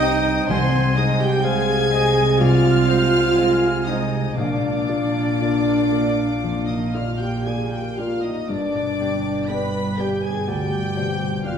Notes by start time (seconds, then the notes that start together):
Already playing: C2 G2 C3 G3 C4 D#4 G4 C5 D#5 G5 C6 D#6
0.01 C4 G4 C5
0.25 C4
0.48 C2 C3 C4 C5 G#5 C6
0.73 G#3
0.96 G#3 D#4 G#4 C5 D#5 D#6
1.19 G4 G5 G#5 G6
1.42 G#3 G#4 C5 F5 G#5 C6 G#6
1.68 G#4
1.92 G#3 G#4 C5 D#5
2.17 G#3
2.37 C2 C3 F4 D5 F5 F6
2.65 C4
2.89 G#3 G#4 C5
3.13 G#5
3.37 G#3 G#4 C5 G#5 C6
3.62 G#4
3.86 G#3 D#4 G#4 C5 D#5 D#6
4.12 G#3
4.36 A#1 A#2 D4 D5 F5 D6
4.62 A#3
4.88 A#3 F4 D5
5.13 F5
5.39 A#3 F4 D5 D6
5.65 A#4
5.91 A#3 F4 D5
6.16 A#3
6.43 F2 F3
6.68 A#3 D#4 D#5 D#6
6.92 A#3 F4 D5 F5 F6
7.18 G4 F5 G5 G6
7.43 A#3 F4 G#4 G#5 D6 G#6
7.47 G#4 D5 G#5
7.69 G4 A#4 G5 G6
7.73 G4 G5
7.96 A#3 F4 D5 F5 F6
8.00 D5
8.22 A#3 D#4 D#5 D#6
8.48 G1 G2 D4 D5 D6
8.75 B2
9.00 B3 G4 D5
9.25 G5
9.49 B3 G4 B4 D5 B5 D6 B6
9.74 B5
9.98 B3 G4 D5 G5 G6
10.22 D4 G#4 G#5 G#6
10.46 D2 D3 G4 D5 G5 G6
10.72 G3
10.96 B2 G4 C5 D5
11.20 G5
11.44 B1 B2 B3 F4 G4 B4 D5 F5 D6 F6